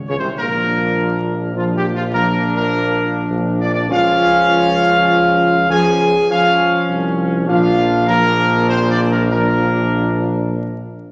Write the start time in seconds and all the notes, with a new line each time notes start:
0.08 C#2 C#3 C#4 C#5
0.18 C2 C3 C4 C5
0.36 A#1 F3 A#3 D4 A#4
1.54 F3 D4 F4
1.74 G3 G4
1.93 F3 F4
2.12 F3 A#3 D4 A#4
2.56 A#3 A#4
3.31 A#1
3.59 D4 D5
3.69 D4 D5
3.89 C#2 F3 C#4 F4 F5
5.68 F3 C#4 G#4 G#5
6.29 F3 C#4 F4 F5
6.89 C2
7.47 A#1 F3 D4 F4 F5
8.07 F3 A#3 D4 A#4
8.68 C4 C5
8.90 D4 D5
9.10 A#3 A#4
9.31 F3 A#3 D4 A#4